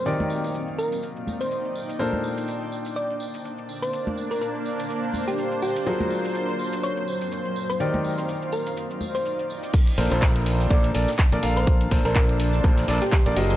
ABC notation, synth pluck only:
X:1
M:4/4
L:1/16
Q:"Swing 16ths" 1/4=124
K:Bb
V:1 name="Synth pluck"
z6 B2 z3 c3 z2 | z8 d2 z4 z c- | c z2 B B z6 G2 z G2 | z8 _d2 z4 z c |
z6 B2 z3 c3 z2 | z8 d2 z4 z c- | c z2 B B z6 G2 z G2 |]